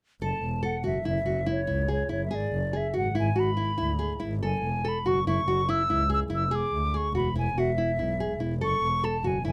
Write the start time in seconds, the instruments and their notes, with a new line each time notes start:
0.21 double bass F#1, nylon-string guitar A4, flute A5
0.42 double bass E1
0.63 nylon-string guitar A4, flute F#5
0.84 double bass F#1, nylon-string guitar F#4, flute E5
1.05 double bass F#1, nylon-string guitar E4, flute E5
1.26 double bass F#1, nylon-string guitar F#4
1.46 nylon-string guitar E4
1.51 flute C#5
1.67 double bass C#2, nylon-string guitar E4
1.88 nylon-string guitar G#4, flute C#5
2.09 double bass F#1, nylon-string guitar E4, flute C#5
2.25 flute E5
2.31 double bass G#1, nylon-string guitar G#4, flute D5
2.53 double bass F#1
2.73 nylon-string guitar G#4, flute E5
2.94 double bass G#1, nylon-string guitar F#4
2.98 flute F#5
3.15 double bass G#1, nylon-string guitar E4
3.19 flute G#5
3.36 double bass G#1, nylon-string guitar F#4, flute B5
3.57 nylon-string guitar E4
3.78 double bass D2, nylon-string guitar E4
3.99 nylon-string guitar G#4
4.20 double bass G#1, nylon-string guitar E4
4.42 double bass F#1, nylon-string guitar A4, flute G#5
4.63 double bass E1
4.85 nylon-string guitar A4, flute B5
5.06 double bass F#1, nylon-string guitar F#4, flute C#6
5.27 double bass F#1, nylon-string guitar E4, flute C#6
5.47 double bass F#1, nylon-string guitar F#4
5.69 nylon-string guitar E4, flute E6
5.89 double bass C#2, nylon-string guitar E4
6.10 nylon-string guitar G#4
6.14 flute E6
6.30 double bass F#1, nylon-string guitar E4
6.35 flute E6
6.45 flute E6
6.51 double bass E1, nylon-string guitar G#4
6.55 flute D6
6.73 double bass D2
6.94 nylon-string guitar G#4, flute C#6
7.14 double bass E1, nylon-string guitar F#4, flute B5
7.36 double bass E1, nylon-string guitar E4, flute G#5
7.56 double bass E1, nylon-string guitar F#4, flute E5
7.78 nylon-string guitar E4
7.97 double bass B1, nylon-string guitar E4
8.20 nylon-string guitar G#4
8.40 double bass E1, nylon-string guitar E4
8.61 double bass F#1, nylon-string guitar A4, flute C#6
8.83 double bass E1
9.04 nylon-string guitar A4, flute A5
9.24 double bass F#1, nylon-string guitar F#4, flute G#5
9.44 double bass F#1, nylon-string guitar E4, flute G#5